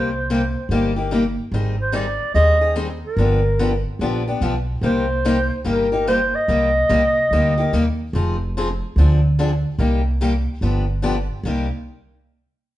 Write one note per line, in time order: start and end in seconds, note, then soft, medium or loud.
0.00 0.53 C2 medium
0.00 1.08 C5 medium
0.30 0.40 C3 medium
0.30 0.40 G3 medium
0.30 0.41 A#3 medium
0.30 0.41 D#4 medium
0.30 0.41 G4 medium
0.69 1.35 G1 medium
0.69 0.92 C3 medium
0.69 0.92 G3 medium
0.69 0.92 A#3 medium
0.69 0.92 D#4 medium
0.69 0.92 G4 medium
0.96 1.11 A#3 soft
0.96 1.11 D#4 soft
0.96 1.11 G4 medium
1.11 1.22 C3 medium
1.11 1.23 G3 medium
1.11 1.23 A#3 medium
1.11 1.23 D#4 medium
1.11 1.23 G4 medium
1.52 2.18 G#1 medium
1.52 1.74 D#3 medium
1.52 1.74 G3 medium
1.52 1.74 C4 medium
1.52 1.75 D#4 medium
1.52 1.75 G#4 medium
1.82 1.96 C5 medium
1.92 2.04 D#3 medium
1.92 2.05 G3 medium
1.92 2.05 C4 medium
1.92 2.05 D#4 medium
1.92 2.05 G#4 medium
1.92 2.35 D5 medium
2.34 3.01 D#2 medium
2.34 2.56 D#3 medium
2.34 2.56 G3 medium
2.34 2.57 C4 medium
2.34 2.57 D#4 medium
2.34 2.57 G#4 medium
2.34 2.73 D#5 loud
2.61 2.75 C4 soft
2.61 2.75 D#4 soft
2.61 2.75 G#4 medium
2.75 2.87 D#3 medium
2.75 2.87 G3 medium
2.75 2.88 C4 medium
2.75 2.87 D#4 medium
2.75 2.87 G#4 medium
3.04 3.82 A#4 medium
3.17 3.83 G1 medium
3.17 3.39 D3 medium
3.17 3.39 F3 medium
3.17 3.39 B3 medium
3.17 3.39 D4 medium
3.17 3.40 G4 medium
3.59 3.70 D3 medium
3.59 3.70 F3 medium
3.59 3.70 B3 medium
3.59 3.71 D4 medium
3.59 3.71 G4 medium
3.99 4.35 A#1 medium
3.99 4.22 D3 medium
3.99 4.22 F3 medium
3.99 4.22 B3 medium
3.99 4.22 D4 medium
3.99 4.22 G4 medium
4.28 4.41 B3 soft
4.28 4.41 D4 medium
4.28 4.41 G4 medium
4.41 4.76 B1 medium
4.41 4.53 D3 medium
4.41 4.53 F3 medium
4.41 4.53 B3 medium
4.41 4.53 D4 medium
4.41 4.53 G4 medium
4.81 5.48 C2 medium
4.81 5.04 C3 medium
4.81 5.04 G3 medium
4.81 5.05 A#3 medium
4.81 5.04 D#4 medium
4.81 5.05 G4 medium
4.81 5.62 C5 loud
5.25 5.36 C3 medium
5.25 5.36 G3 medium
5.25 5.36 A#3 medium
5.25 5.36 D#4 medium
5.25 5.36 G4 loud
5.64 6.31 G1 medium
5.64 5.86 C3 medium
5.64 5.86 G3 medium
5.64 5.87 A#3 medium
5.64 5.87 D#4 medium
5.64 5.87 G4 medium
5.64 6.05 A#4 medium
5.92 6.06 A#3 soft
5.92 6.07 D#4 medium
5.92 6.06 G4 medium
6.07 6.18 C3 medium
6.07 6.18 G3 medium
6.07 6.18 A#3 medium
6.07 6.19 D#4 medium
6.07 6.19 G4 medium
6.07 6.37 C5 medium
6.35 7.99 D#5 loud
6.48 6.81 C2 medium
6.48 6.70 C3 medium
6.48 6.70 G3 medium
6.48 6.70 A#3 medium
6.48 6.70 D#4 medium
6.48 6.70 G4 medium
6.89 7.24 C2 medium
6.89 7.01 C3 medium
6.89 7.01 G3 medium
6.89 7.01 A#3 medium
6.89 7.01 D#4 medium
6.89 7.01 G4 medium
7.31 7.66 D2 medium
7.31 7.53 C3 medium
7.31 7.53 G3 medium
7.31 7.53 A#3 medium
7.31 7.53 D#4 medium
7.31 7.53 G4 medium
7.57 7.72 A#3 soft
7.57 7.72 D#4 soft
7.57 7.72 G4 medium
7.73 8.08 D#2 medium
7.73 7.84 C3 medium
7.73 7.84 G3 medium
7.73 7.84 A#3 medium
7.73 7.85 D#4 medium
7.73 7.84 G4 medium
8.13 8.80 F1 medium
8.13 8.35 F3 medium
8.13 8.36 C4 medium
8.13 8.36 D#4 medium
8.13 8.36 G#4 medium
8.57 8.67 F3 medium
8.57 8.67 C4 medium
8.57 8.68 D#4 medium
8.57 8.68 G#4 medium
8.96 9.62 D2 medium
8.96 9.18 D3 medium
8.96 9.19 F3 medium
8.96 9.19 C4 medium
8.96 9.19 D4 medium
8.96 9.19 G#4 medium
9.39 9.49 D3 medium
9.39 9.50 F3 medium
9.39 9.50 C4 medium
9.39 9.50 D4 medium
9.39 9.50 G#4 medium
9.78 10.45 C2 medium
9.78 10.00 C3 medium
9.78 10.00 G3 medium
9.78 10.01 A#3 medium
9.78 10.01 D#4 medium
9.78 10.01 G4 medium
10.21 10.32 C3 medium
10.21 10.32 G3 medium
10.21 10.32 A#3 medium
10.21 10.32 D#4 medium
10.21 10.32 G4 medium
10.61 11.28 G1 medium
10.61 10.83 D3 medium
10.61 10.84 F3 medium
10.61 10.84 B3 medium
10.61 10.84 D4 medium
10.61 10.84 G4 medium
11.02 11.14 D3 medium
11.02 11.14 F3 medium
11.02 11.15 B3 medium
11.02 11.15 D4 medium
11.02 11.15 G4 medium
11.43 11.68 C2 medium
11.43 11.66 C3 medium
11.43 11.66 G3 medium
11.43 11.66 A#3 medium
11.43 11.67 D#4 medium
11.43 11.67 G4 medium